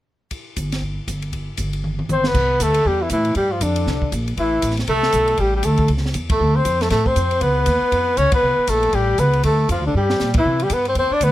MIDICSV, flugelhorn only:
0, 0, Header, 1, 2, 480
1, 0, Start_track
1, 0, Key_signature, 0, "major"
1, 0, Tempo, 253378
1, 595, Time_signature, 4, 2, 24, 8
1, 21441, End_track
2, 0, Start_track
2, 0, Title_t, "Flugelhorn"
2, 0, Program_c, 0, 56
2, 4027, Note_on_c, 0, 72, 90
2, 4322, Note_on_c, 0, 71, 91
2, 4350, Note_off_c, 0, 72, 0
2, 4968, Note_on_c, 0, 69, 91
2, 4997, Note_off_c, 0, 71, 0
2, 5444, Note_on_c, 0, 67, 87
2, 5473, Note_off_c, 0, 69, 0
2, 5724, Note_on_c, 0, 64, 72
2, 5752, Note_off_c, 0, 67, 0
2, 5901, Note_off_c, 0, 64, 0
2, 5912, Note_on_c, 0, 64, 80
2, 6346, Note_off_c, 0, 64, 0
2, 6383, Note_on_c, 0, 67, 83
2, 6663, Note_on_c, 0, 65, 76
2, 6691, Note_off_c, 0, 67, 0
2, 6870, Note_on_c, 0, 62, 69
2, 6899, Note_off_c, 0, 65, 0
2, 7818, Note_off_c, 0, 62, 0
2, 8319, Note_on_c, 0, 64, 83
2, 9018, Note_off_c, 0, 64, 0
2, 9272, Note_on_c, 0, 69, 101
2, 10246, Note_on_c, 0, 67, 83
2, 10274, Note_off_c, 0, 69, 0
2, 10513, Note_off_c, 0, 67, 0
2, 10534, Note_on_c, 0, 67, 78
2, 10716, Note_on_c, 0, 69, 79
2, 10744, Note_off_c, 0, 67, 0
2, 11180, Note_off_c, 0, 69, 0
2, 11963, Note_on_c, 0, 69, 78
2, 12427, Note_on_c, 0, 72, 87
2, 12455, Note_off_c, 0, 69, 0
2, 12923, Note_on_c, 0, 69, 77
2, 12952, Note_off_c, 0, 72, 0
2, 13075, Note_off_c, 0, 69, 0
2, 13087, Note_on_c, 0, 69, 83
2, 13411, Note_on_c, 0, 72, 91
2, 13440, Note_off_c, 0, 69, 0
2, 14084, Note_on_c, 0, 71, 90
2, 14112, Note_off_c, 0, 72, 0
2, 15500, Note_on_c, 0, 73, 95
2, 15529, Note_off_c, 0, 71, 0
2, 15778, Note_off_c, 0, 73, 0
2, 15805, Note_on_c, 0, 71, 98
2, 16475, Note_on_c, 0, 69, 94
2, 16504, Note_off_c, 0, 71, 0
2, 16957, Note_on_c, 0, 67, 91
2, 16985, Note_off_c, 0, 69, 0
2, 17419, Note_on_c, 0, 71, 89
2, 17447, Note_off_c, 0, 67, 0
2, 17888, Note_off_c, 0, 71, 0
2, 17907, Note_on_c, 0, 69, 88
2, 18339, Note_off_c, 0, 69, 0
2, 18396, Note_on_c, 0, 65, 72
2, 18645, Note_off_c, 0, 65, 0
2, 18686, Note_on_c, 0, 62, 70
2, 18845, Note_off_c, 0, 62, 0
2, 18884, Note_on_c, 0, 67, 80
2, 19575, Note_off_c, 0, 67, 0
2, 19682, Note_on_c, 0, 64, 88
2, 20147, Note_on_c, 0, 67, 85
2, 20175, Note_off_c, 0, 64, 0
2, 20340, Note_on_c, 0, 71, 85
2, 20368, Note_off_c, 0, 67, 0
2, 20595, Note_off_c, 0, 71, 0
2, 20615, Note_on_c, 0, 72, 83
2, 20769, Note_off_c, 0, 72, 0
2, 20819, Note_on_c, 0, 72, 96
2, 21104, Note_on_c, 0, 74, 90
2, 21133, Note_off_c, 0, 72, 0
2, 21293, Note_on_c, 0, 71, 90
2, 21321, Note_off_c, 0, 74, 0
2, 21441, Note_off_c, 0, 71, 0
2, 21441, End_track
0, 0, End_of_file